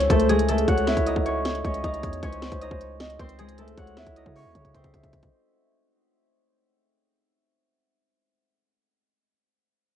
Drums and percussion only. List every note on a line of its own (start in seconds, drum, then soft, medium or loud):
0.00 closed hi-hat medium
0.10 kick loud
0.10 closed hi-hat medium
0.19 closed hi-hat medium
0.29 closed hi-hat medium
0.39 closed hi-hat medium
0.49 closed hi-hat medium
0.58 closed hi-hat medium
0.68 kick loud
0.68 closed hi-hat medium
0.78 closed hi-hat medium
0.87 snare loud
0.87 closed hi-hat medium
0.97 kick loud
0.97 closed hi-hat medium
1.07 closed hi-hat medium
1.16 kick medium
1.26 closed hi-hat medium
1.45 snare loud
1.45 closed hi-hat medium
1.55 closed hi-hat medium
1.65 kick loud
1.65 closed hi-hat medium
1.74 closed hi-hat medium
1.84 kick medium
1.84 closed hi-hat medium
1.94 closed hi-hat medium
2.03 kick loud
2.03 closed hi-hat medium
2.13 closed hi-hat medium
2.23 kick loud
2.23 closed hi-hat medium
2.33 closed hi-hat medium
2.42 snare loud
2.42 closed hi-hat medium
2.52 kick loud
2.52 closed hi-hat medium
2.62 closed hi-hat medium
2.71 kick loud
2.81 closed hi-hat medium
3.00 snare loud
3.00 closed hi-hat medium
3.10 closed hi-hat medium
3.20 kick loud
3.20 closed hi-hat medium
3.29 closed hi-hat medium
3.39 closed hi-hat medium
3.49 closed hi-hat medium
3.58 closed hi-hat medium
3.68 closed hi-hat medium
3.78 kick loud
3.78 closed hi-hat medium
3.87 closed hi-hat medium
3.97 snare loud
3.97 closed hi-hat medium
4.07 kick loud
4.07 closed hi-hat medium
4.16 closed hi-hat medium
4.26 kick medium
4.36 open hi-hat medium
4.55 kick medium
4.55 closed hi-hat medium
4.65 kick medium
4.65 closed hi-hat medium
4.74 kick medium
4.74 closed hi-hat medium
4.84 kick medium
4.84 closed hi-hat medium
4.94 kick medium
4.94 closed hi-hat medium
5.03 kick medium
5.03 closed hi-hat medium
5.13 kick loud
5.13 closed hi-hat medium
5.23 kick loud
5.23 closed hi-hat medium